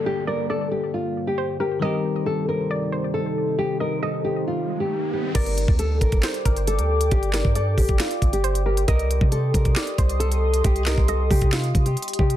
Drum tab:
CC |--------------------------------|--------------------------------|--------------------------------|x-------------------------------|
HH |--------------------------------|--------------------------------|--------------------------------|x-x-x---x---x-x-x-x-x-x-x-x---x-|
CP |--------------------------------|--------------------------------|--------------------------------|----------------x---------------|
SD |--------------------------------|--------------------------------|--------------------------------|----------------o---------------|
BD |--------------------------------|--------------------------------|--------------------------------|o-----o-----o-o-----o-----------|

CC |--------------------------------|--------------------------------|--------------------------------|
HH |x-x-x---x---o-x-x-x-x-x-x-x---x-|x-x-x---x---x-x-x-x-x-x-x-x---x-|x-x-x---x---o-x-x-x-x-x-xxxx--x-|
CP |----x-----------x---------------|----------------x---------------|----x-----------x---------------|
SD |----o-----------o---------------|----------------o---------------|----o-----------o---------------|
BD |o-----o-----o-o-----o-----------|o-----o-----o-o-----o-----------|o-----o-----o-o-----o-------o---|